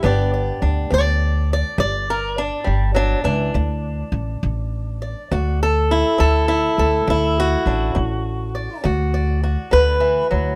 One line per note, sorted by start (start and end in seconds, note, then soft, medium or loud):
0.03 0.50 G1 medium
0.03 0.56 G3 medium
0.03 0.89 B3 soft
0.03 0.62 D4 soft
0.03 2.09 G4 soft
0.03 0.33 D5 soft
0.34 0.93 D5 soft
0.62 0.85 D2 medium
0.62 2.38 D4 soft
0.90 1.61 D2 medium
0.90 1.44 B3 medium
0.90 1.51 D5 medium
1.53 1.79 D5 medium
1.78 2.48 G1 medium
1.78 2.31 G3 medium
1.78 2.67 D5 medium
2.10 2.39 A#4 medium
2.38 2.95 D4 medium
2.64 3.14 G1 medium
2.64 2.94 G3 medium
2.95 3.24 F#3 medium
2.95 3.23 D4 medium
3.24 3.48 C#2 medium
3.24 3.54 E3 medium
3.24 5.60 D4 medium
3.54 4.01 D2 medium
3.54 4.08 D3 medium
4.12 4.36 A1 medium
4.43 5.13 A1 medium
5.02 5.91 D5 soft
5.31 6.01 D2 medium
5.31 5.84 D3 medium
5.31 5.61 F#4 soft
5.63 6.19 A4 medium
5.91 6.47 E4 medium
6.18 6.66 D2 medium
6.18 6.72 D4 medium
6.18 6.78 A4 loud
6.48 7.07 E4 medium
6.78 7.01 D2 medium
6.78 7.38 A4 medium
7.07 7.54 D2 medium
7.07 7.61 D3 medium
7.07 7.97 E4 medium
7.40 8.84 F#4 medium
7.66 7.89 A1 medium
7.66 7.94 D4 soft
7.95 8.66 A1 medium
7.95 8.49 D4 medium
8.55 9.14 D5 soft
8.84 9.55 D2 medium
8.84 9.37 D3 medium
8.84 9.42 F#4 soft
9.14 9.72 D5 soft
9.44 10.55 F#4 soft
9.71 10.20 D2 medium
9.71 10.00 D3 medium
9.71 10.55 B4 medium
10.00 10.30 E3 medium
10.31 10.55 D2 medium
10.31 10.55 F#3 medium